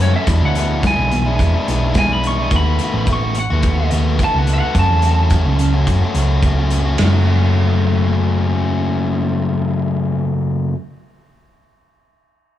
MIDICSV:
0, 0, Header, 1, 6, 480
1, 0, Start_track
1, 0, Key_signature, 3, "minor"
1, 0, Tempo, 559701
1, 237, Time_signature, 4, 2, 24, 8
1, 10794, End_track
2, 0, Start_track
2, 0, Title_t, "Lead electric guitar"
2, 0, Program_c, 0, 29
2, 16, Note_on_c, 0, 73, 76
2, 123, Note_off_c, 0, 73, 0
2, 137, Note_on_c, 0, 76, 73
2, 360, Note_off_c, 0, 76, 0
2, 388, Note_on_c, 0, 78, 71
2, 722, Note_off_c, 0, 78, 0
2, 745, Note_on_c, 0, 80, 82
2, 1197, Note_off_c, 0, 80, 0
2, 1706, Note_on_c, 0, 80, 85
2, 1808, Note_off_c, 0, 80, 0
2, 1827, Note_on_c, 0, 83, 75
2, 1929, Note_off_c, 0, 83, 0
2, 1949, Note_on_c, 0, 85, 70
2, 2166, Note_off_c, 0, 85, 0
2, 2197, Note_on_c, 0, 83, 80
2, 2643, Note_off_c, 0, 83, 0
2, 2682, Note_on_c, 0, 85, 73
2, 2893, Note_off_c, 0, 85, 0
2, 2910, Note_on_c, 0, 78, 80
2, 3360, Note_off_c, 0, 78, 0
2, 3639, Note_on_c, 0, 81, 86
2, 3761, Note_off_c, 0, 81, 0
2, 3761, Note_on_c, 0, 78, 66
2, 3856, Note_off_c, 0, 78, 0
2, 3889, Note_on_c, 0, 78, 76
2, 4097, Note_off_c, 0, 78, 0
2, 4111, Note_on_c, 0, 81, 78
2, 4560, Note_off_c, 0, 81, 0
2, 10794, End_track
3, 0, Start_track
3, 0, Title_t, "Overdriven electric guitar"
3, 0, Program_c, 1, 29
3, 0, Note_on_c, 1, 42, 77
3, 0, Note_on_c, 1, 49, 82
3, 0, Note_on_c, 1, 54, 50
3, 0, Note_on_c, 1, 57, 54
3, 0, Note_on_c, 1, 61, 66
3, 0, Note_on_c, 1, 66, 67
3, 102, Note_off_c, 1, 66, 0
3, 111, Note_off_c, 1, 61, 0
3, 113, Note_on_c, 1, 66, 65
3, 116, Note_off_c, 1, 42, 0
3, 118, Note_off_c, 1, 49, 0
3, 120, Note_off_c, 1, 57, 0
3, 121, Note_on_c, 1, 61, 60
3, 125, Note_off_c, 1, 54, 0
3, 131, Note_on_c, 1, 57, 61
3, 135, Note_on_c, 1, 54, 54
3, 220, Note_off_c, 1, 66, 0
3, 225, Note_off_c, 1, 61, 0
3, 229, Note_off_c, 1, 57, 0
3, 231, Note_off_c, 1, 54, 0
3, 236, Note_on_c, 1, 40, 73
3, 238, Note_on_c, 1, 47, 83
3, 248, Note_on_c, 1, 52, 83
3, 250, Note_on_c, 1, 56, 76
3, 256, Note_on_c, 1, 62, 78
3, 259, Note_on_c, 1, 64, 80
3, 472, Note_off_c, 1, 52, 0
3, 482, Note_on_c, 1, 52, 68
3, 483, Note_off_c, 1, 56, 0
3, 493, Note_off_c, 1, 62, 0
3, 493, Note_on_c, 1, 56, 71
3, 500, Note_off_c, 1, 64, 0
3, 503, Note_on_c, 1, 62, 70
3, 510, Note_on_c, 1, 64, 72
3, 711, Note_off_c, 1, 40, 0
3, 717, Note_off_c, 1, 47, 0
3, 721, Note_off_c, 1, 52, 0
3, 721, Note_on_c, 1, 40, 89
3, 725, Note_off_c, 1, 56, 0
3, 729, Note_on_c, 1, 47, 77
3, 730, Note_off_c, 1, 62, 0
3, 731, Note_on_c, 1, 52, 82
3, 735, Note_on_c, 1, 56, 78
3, 736, Note_off_c, 1, 64, 0
3, 741, Note_on_c, 1, 62, 96
3, 746, Note_on_c, 1, 64, 88
3, 830, Note_off_c, 1, 64, 0
3, 840, Note_on_c, 1, 64, 59
3, 842, Note_off_c, 1, 62, 0
3, 846, Note_off_c, 1, 56, 0
3, 853, Note_on_c, 1, 62, 60
3, 855, Note_off_c, 1, 52, 0
3, 856, Note_on_c, 1, 56, 56
3, 865, Note_on_c, 1, 52, 50
3, 954, Note_off_c, 1, 52, 0
3, 954, Note_off_c, 1, 56, 0
3, 958, Note_off_c, 1, 62, 0
3, 962, Note_off_c, 1, 64, 0
3, 1079, Note_off_c, 1, 40, 0
3, 1081, Note_on_c, 1, 64, 70
3, 1083, Note_off_c, 1, 47, 0
3, 1087, Note_on_c, 1, 62, 58
3, 1096, Note_on_c, 1, 56, 59
3, 1104, Note_on_c, 1, 52, 53
3, 1309, Note_off_c, 1, 64, 0
3, 1319, Note_on_c, 1, 64, 64
3, 1321, Note_off_c, 1, 62, 0
3, 1326, Note_off_c, 1, 56, 0
3, 1331, Note_off_c, 1, 52, 0
3, 1331, Note_on_c, 1, 62, 67
3, 1336, Note_on_c, 1, 56, 60
3, 1341, Note_on_c, 1, 52, 54
3, 1437, Note_off_c, 1, 52, 0
3, 1448, Note_off_c, 1, 56, 0
3, 1448, Note_on_c, 1, 52, 64
3, 1451, Note_off_c, 1, 62, 0
3, 1458, Note_on_c, 1, 56, 80
3, 1459, Note_off_c, 1, 64, 0
3, 1461, Note_on_c, 1, 62, 73
3, 1469, Note_on_c, 1, 64, 72
3, 1681, Note_off_c, 1, 52, 0
3, 1681, Note_on_c, 1, 40, 80
3, 1683, Note_off_c, 1, 56, 0
3, 1684, Note_on_c, 1, 47, 76
3, 1691, Note_off_c, 1, 62, 0
3, 1691, Note_on_c, 1, 52, 80
3, 1692, Note_off_c, 1, 64, 0
3, 1693, Note_on_c, 1, 56, 82
3, 1702, Note_on_c, 1, 62, 83
3, 1702, Note_on_c, 1, 64, 99
3, 1783, Note_off_c, 1, 64, 0
3, 1790, Note_off_c, 1, 62, 0
3, 1793, Note_on_c, 1, 64, 65
3, 1798, Note_off_c, 1, 56, 0
3, 1800, Note_on_c, 1, 62, 64
3, 1808, Note_off_c, 1, 52, 0
3, 1809, Note_on_c, 1, 56, 55
3, 1818, Note_on_c, 1, 52, 52
3, 2033, Note_off_c, 1, 64, 0
3, 2039, Note_off_c, 1, 40, 0
3, 2040, Note_off_c, 1, 47, 0
3, 2043, Note_on_c, 1, 64, 59
3, 2044, Note_off_c, 1, 62, 0
3, 2051, Note_off_c, 1, 56, 0
3, 2054, Note_on_c, 1, 62, 64
3, 2058, Note_off_c, 1, 52, 0
3, 2061, Note_on_c, 1, 56, 58
3, 2069, Note_on_c, 1, 52, 51
3, 2146, Note_off_c, 1, 64, 0
3, 2151, Note_off_c, 1, 62, 0
3, 2155, Note_off_c, 1, 56, 0
3, 2158, Note_off_c, 1, 52, 0
3, 2162, Note_on_c, 1, 51, 78
3, 2173, Note_on_c, 1, 57, 79
3, 2182, Note_on_c, 1, 59, 77
3, 2192, Note_on_c, 1, 66, 87
3, 2404, Note_off_c, 1, 51, 0
3, 2414, Note_on_c, 1, 51, 62
3, 2421, Note_off_c, 1, 57, 0
3, 2422, Note_off_c, 1, 59, 0
3, 2424, Note_on_c, 1, 57, 65
3, 2432, Note_on_c, 1, 59, 69
3, 2434, Note_off_c, 1, 66, 0
3, 2437, Note_on_c, 1, 66, 75
3, 2633, Note_off_c, 1, 51, 0
3, 2643, Note_on_c, 1, 51, 78
3, 2649, Note_off_c, 1, 57, 0
3, 2653, Note_off_c, 1, 59, 0
3, 2653, Note_on_c, 1, 57, 88
3, 2663, Note_on_c, 1, 59, 90
3, 2669, Note_off_c, 1, 66, 0
3, 2672, Note_on_c, 1, 66, 88
3, 2767, Note_off_c, 1, 66, 0
3, 2770, Note_on_c, 1, 66, 59
3, 2771, Note_off_c, 1, 59, 0
3, 2781, Note_on_c, 1, 59, 60
3, 2793, Note_off_c, 1, 57, 0
3, 2797, Note_on_c, 1, 57, 48
3, 2877, Note_off_c, 1, 51, 0
3, 2885, Note_off_c, 1, 59, 0
3, 2890, Note_off_c, 1, 57, 0
3, 2898, Note_off_c, 1, 66, 0
3, 3004, Note_on_c, 1, 66, 64
3, 3022, Note_on_c, 1, 59, 59
3, 3032, Note_on_c, 1, 57, 50
3, 3245, Note_off_c, 1, 66, 0
3, 3249, Note_on_c, 1, 66, 69
3, 3252, Note_off_c, 1, 59, 0
3, 3262, Note_on_c, 1, 59, 60
3, 3269, Note_off_c, 1, 57, 0
3, 3273, Note_on_c, 1, 57, 51
3, 3368, Note_on_c, 1, 51, 61
3, 3377, Note_off_c, 1, 57, 0
3, 3377, Note_off_c, 1, 59, 0
3, 3380, Note_on_c, 1, 57, 66
3, 3388, Note_on_c, 1, 59, 76
3, 3389, Note_off_c, 1, 66, 0
3, 3392, Note_on_c, 1, 66, 78
3, 3593, Note_off_c, 1, 51, 0
3, 3603, Note_on_c, 1, 51, 78
3, 3612, Note_off_c, 1, 57, 0
3, 3613, Note_off_c, 1, 59, 0
3, 3616, Note_on_c, 1, 57, 80
3, 3624, Note_on_c, 1, 59, 79
3, 3629, Note_off_c, 1, 66, 0
3, 3633, Note_on_c, 1, 66, 90
3, 3720, Note_off_c, 1, 66, 0
3, 3723, Note_on_c, 1, 66, 65
3, 3728, Note_off_c, 1, 59, 0
3, 3739, Note_on_c, 1, 59, 57
3, 3751, Note_off_c, 1, 57, 0
3, 3754, Note_on_c, 1, 57, 55
3, 3960, Note_off_c, 1, 51, 0
3, 3964, Note_off_c, 1, 66, 0
3, 3968, Note_off_c, 1, 59, 0
3, 3968, Note_on_c, 1, 66, 65
3, 3978, Note_on_c, 1, 59, 61
3, 3991, Note_off_c, 1, 57, 0
3, 3995, Note_on_c, 1, 57, 50
3, 4073, Note_off_c, 1, 59, 0
3, 4078, Note_on_c, 1, 42, 68
3, 4082, Note_on_c, 1, 49, 76
3, 4089, Note_on_c, 1, 54, 70
3, 4090, Note_off_c, 1, 57, 0
3, 4094, Note_on_c, 1, 57, 77
3, 4098, Note_on_c, 1, 61, 79
3, 4099, Note_off_c, 1, 66, 0
3, 4102, Note_on_c, 1, 66, 76
3, 4309, Note_off_c, 1, 54, 0
3, 4319, Note_off_c, 1, 57, 0
3, 4320, Note_on_c, 1, 54, 65
3, 4326, Note_off_c, 1, 61, 0
3, 4329, Note_on_c, 1, 57, 64
3, 4332, Note_off_c, 1, 66, 0
3, 4336, Note_on_c, 1, 61, 72
3, 4342, Note_on_c, 1, 66, 67
3, 4554, Note_off_c, 1, 42, 0
3, 4560, Note_off_c, 1, 49, 0
3, 4564, Note_on_c, 1, 42, 85
3, 4569, Note_off_c, 1, 54, 0
3, 4572, Note_off_c, 1, 57, 0
3, 4572, Note_off_c, 1, 61, 0
3, 4574, Note_on_c, 1, 49, 82
3, 4578, Note_off_c, 1, 66, 0
3, 4579, Note_on_c, 1, 54, 80
3, 4582, Note_on_c, 1, 61, 90
3, 4583, Note_on_c, 1, 57, 80
3, 4588, Note_on_c, 1, 66, 83
3, 4668, Note_off_c, 1, 66, 0
3, 4678, Note_off_c, 1, 61, 0
3, 4678, Note_on_c, 1, 66, 61
3, 4686, Note_off_c, 1, 57, 0
3, 4688, Note_on_c, 1, 61, 53
3, 4695, Note_off_c, 1, 54, 0
3, 4696, Note_on_c, 1, 57, 57
3, 4705, Note_on_c, 1, 54, 49
3, 4794, Note_off_c, 1, 54, 0
3, 4800, Note_off_c, 1, 57, 0
3, 4800, Note_off_c, 1, 61, 0
3, 4800, Note_off_c, 1, 66, 0
3, 4919, Note_on_c, 1, 66, 68
3, 4921, Note_off_c, 1, 42, 0
3, 4926, Note_off_c, 1, 49, 0
3, 4933, Note_on_c, 1, 61, 64
3, 4939, Note_on_c, 1, 57, 58
3, 4944, Note_on_c, 1, 54, 52
3, 5153, Note_off_c, 1, 66, 0
3, 5158, Note_off_c, 1, 61, 0
3, 5164, Note_on_c, 1, 66, 67
3, 5166, Note_off_c, 1, 57, 0
3, 5168, Note_on_c, 1, 61, 63
3, 5173, Note_off_c, 1, 54, 0
3, 5177, Note_on_c, 1, 57, 56
3, 5184, Note_on_c, 1, 54, 50
3, 5269, Note_off_c, 1, 54, 0
3, 5276, Note_off_c, 1, 57, 0
3, 5280, Note_on_c, 1, 54, 69
3, 5285, Note_off_c, 1, 61, 0
3, 5287, Note_on_c, 1, 57, 65
3, 5294, Note_off_c, 1, 66, 0
3, 5295, Note_on_c, 1, 61, 70
3, 5304, Note_on_c, 1, 66, 74
3, 5522, Note_on_c, 1, 42, 71
3, 5524, Note_off_c, 1, 54, 0
3, 5526, Note_off_c, 1, 57, 0
3, 5527, Note_on_c, 1, 49, 75
3, 5528, Note_off_c, 1, 61, 0
3, 5534, Note_on_c, 1, 54, 79
3, 5536, Note_on_c, 1, 57, 75
3, 5538, Note_off_c, 1, 66, 0
3, 5538, Note_on_c, 1, 61, 77
3, 5548, Note_on_c, 1, 66, 85
3, 5634, Note_off_c, 1, 66, 0
3, 5644, Note_on_c, 1, 66, 63
3, 5648, Note_off_c, 1, 61, 0
3, 5653, Note_off_c, 1, 57, 0
3, 5658, Note_on_c, 1, 61, 54
3, 5661, Note_off_c, 1, 54, 0
3, 5663, Note_on_c, 1, 57, 56
3, 5671, Note_on_c, 1, 54, 52
3, 5868, Note_off_c, 1, 66, 0
3, 5879, Note_on_c, 1, 66, 62
3, 5880, Note_off_c, 1, 42, 0
3, 5880, Note_off_c, 1, 61, 0
3, 5882, Note_off_c, 1, 49, 0
3, 5890, Note_on_c, 1, 61, 54
3, 5892, Note_off_c, 1, 57, 0
3, 5896, Note_off_c, 1, 54, 0
3, 5903, Note_on_c, 1, 57, 49
3, 5906, Note_on_c, 1, 54, 47
3, 5984, Note_off_c, 1, 66, 0
3, 5989, Note_off_c, 1, 61, 0
3, 5995, Note_off_c, 1, 57, 0
3, 5997, Note_off_c, 1, 54, 0
3, 6010, Note_on_c, 1, 42, 70
3, 6014, Note_on_c, 1, 49, 69
3, 6020, Note_on_c, 1, 54, 74
3, 6032, Note_on_c, 1, 57, 75
3, 6036, Note_on_c, 1, 61, 80
3, 6039, Note_on_c, 1, 66, 80
3, 9208, Note_off_c, 1, 42, 0
3, 9210, Note_off_c, 1, 49, 0
3, 9213, Note_off_c, 1, 54, 0
3, 9219, Note_off_c, 1, 57, 0
3, 9221, Note_off_c, 1, 61, 0
3, 9223, Note_off_c, 1, 66, 0
3, 10794, End_track
4, 0, Start_track
4, 0, Title_t, "Picked electric bass"
4, 0, Program_c, 2, 34
4, 0, Note_on_c, 2, 42, 82
4, 107, Note_off_c, 2, 42, 0
4, 238, Note_on_c, 2, 40, 89
4, 350, Note_off_c, 2, 40, 0
4, 362, Note_on_c, 2, 38, 70
4, 809, Note_off_c, 2, 38, 0
4, 837, Note_on_c, 2, 35, 73
4, 949, Note_off_c, 2, 35, 0
4, 964, Note_on_c, 2, 35, 75
4, 1185, Note_off_c, 2, 35, 0
4, 1193, Note_on_c, 2, 40, 92
4, 1307, Note_off_c, 2, 40, 0
4, 1441, Note_on_c, 2, 35, 74
4, 2124, Note_off_c, 2, 35, 0
4, 2151, Note_on_c, 2, 39, 86
4, 2379, Note_off_c, 2, 39, 0
4, 2519, Note_on_c, 2, 33, 74
4, 2967, Note_off_c, 2, 33, 0
4, 3005, Note_on_c, 2, 39, 76
4, 3338, Note_off_c, 2, 39, 0
4, 3362, Note_on_c, 2, 39, 73
4, 3585, Note_off_c, 2, 39, 0
4, 3725, Note_on_c, 2, 37, 79
4, 3946, Note_off_c, 2, 37, 0
4, 4069, Note_on_c, 2, 42, 89
4, 4185, Note_off_c, 2, 42, 0
4, 4199, Note_on_c, 2, 40, 65
4, 4648, Note_off_c, 2, 40, 0
4, 4672, Note_on_c, 2, 37, 73
4, 4787, Note_off_c, 2, 37, 0
4, 4794, Note_on_c, 2, 37, 73
4, 5020, Note_off_c, 2, 37, 0
4, 5033, Note_on_c, 2, 42, 77
4, 5147, Note_off_c, 2, 42, 0
4, 5269, Note_on_c, 2, 37, 69
4, 5959, Note_off_c, 2, 37, 0
4, 6001, Note_on_c, 2, 30, 77
4, 9170, Note_off_c, 2, 30, 0
4, 10794, End_track
5, 0, Start_track
5, 0, Title_t, "Muted overdriven electric guitar strokes"
5, 964, Note_on_c, 9, 29, 41
5, 1050, Note_off_c, 9, 29, 0
5, 2887, Note_on_c, 9, 29, 43
5, 2973, Note_off_c, 9, 29, 0
5, 4804, Note_on_c, 9, 29, 40
5, 4890, Note_off_c, 9, 29, 0
5, 10794, End_track
6, 0, Start_track
6, 0, Title_t, "Drums"
6, 0, Note_on_c, 9, 42, 59
6, 83, Note_off_c, 9, 42, 0
6, 231, Note_on_c, 9, 42, 78
6, 232, Note_on_c, 9, 36, 92
6, 316, Note_off_c, 9, 42, 0
6, 318, Note_off_c, 9, 36, 0
6, 474, Note_on_c, 9, 42, 56
6, 559, Note_off_c, 9, 42, 0
6, 714, Note_on_c, 9, 36, 99
6, 715, Note_on_c, 9, 42, 75
6, 724, Note_on_c, 9, 38, 96
6, 800, Note_off_c, 9, 36, 0
6, 801, Note_off_c, 9, 42, 0
6, 810, Note_off_c, 9, 38, 0
6, 957, Note_on_c, 9, 42, 57
6, 1043, Note_off_c, 9, 42, 0
6, 1194, Note_on_c, 9, 36, 87
6, 1196, Note_on_c, 9, 42, 66
6, 1280, Note_off_c, 9, 36, 0
6, 1282, Note_off_c, 9, 42, 0
6, 1441, Note_on_c, 9, 42, 56
6, 1527, Note_off_c, 9, 42, 0
6, 1668, Note_on_c, 9, 42, 67
6, 1673, Note_on_c, 9, 36, 88
6, 1676, Note_on_c, 9, 38, 90
6, 1753, Note_off_c, 9, 42, 0
6, 1759, Note_off_c, 9, 36, 0
6, 1762, Note_off_c, 9, 38, 0
6, 1917, Note_on_c, 9, 42, 52
6, 2003, Note_off_c, 9, 42, 0
6, 2151, Note_on_c, 9, 42, 65
6, 2154, Note_on_c, 9, 36, 93
6, 2237, Note_off_c, 9, 42, 0
6, 2239, Note_off_c, 9, 36, 0
6, 2391, Note_on_c, 9, 42, 51
6, 2477, Note_off_c, 9, 42, 0
6, 2630, Note_on_c, 9, 42, 69
6, 2632, Note_on_c, 9, 36, 95
6, 2716, Note_off_c, 9, 42, 0
6, 2718, Note_off_c, 9, 36, 0
6, 2870, Note_on_c, 9, 42, 54
6, 2956, Note_off_c, 9, 42, 0
6, 3110, Note_on_c, 9, 42, 65
6, 3116, Note_on_c, 9, 36, 95
6, 3196, Note_off_c, 9, 42, 0
6, 3201, Note_off_c, 9, 36, 0
6, 3352, Note_on_c, 9, 42, 56
6, 3438, Note_off_c, 9, 42, 0
6, 3595, Note_on_c, 9, 36, 96
6, 3596, Note_on_c, 9, 42, 67
6, 3680, Note_off_c, 9, 36, 0
6, 3682, Note_off_c, 9, 42, 0
6, 3833, Note_on_c, 9, 42, 56
6, 3919, Note_off_c, 9, 42, 0
6, 4072, Note_on_c, 9, 42, 74
6, 4073, Note_on_c, 9, 36, 90
6, 4158, Note_off_c, 9, 42, 0
6, 4159, Note_off_c, 9, 36, 0
6, 4306, Note_on_c, 9, 42, 54
6, 4392, Note_off_c, 9, 42, 0
6, 4546, Note_on_c, 9, 42, 71
6, 4552, Note_on_c, 9, 36, 87
6, 4632, Note_off_c, 9, 42, 0
6, 4637, Note_off_c, 9, 36, 0
6, 4794, Note_on_c, 9, 42, 53
6, 4879, Note_off_c, 9, 42, 0
6, 5034, Note_on_c, 9, 36, 89
6, 5034, Note_on_c, 9, 42, 72
6, 5120, Note_off_c, 9, 36, 0
6, 5120, Note_off_c, 9, 42, 0
6, 5271, Note_on_c, 9, 42, 55
6, 5357, Note_off_c, 9, 42, 0
6, 5509, Note_on_c, 9, 42, 61
6, 5511, Note_on_c, 9, 36, 86
6, 5595, Note_off_c, 9, 42, 0
6, 5596, Note_off_c, 9, 36, 0
6, 5750, Note_on_c, 9, 42, 48
6, 5836, Note_off_c, 9, 42, 0
6, 5987, Note_on_c, 9, 53, 66
6, 5995, Note_on_c, 9, 38, 79
6, 6073, Note_off_c, 9, 53, 0
6, 6081, Note_off_c, 9, 38, 0
6, 10794, End_track
0, 0, End_of_file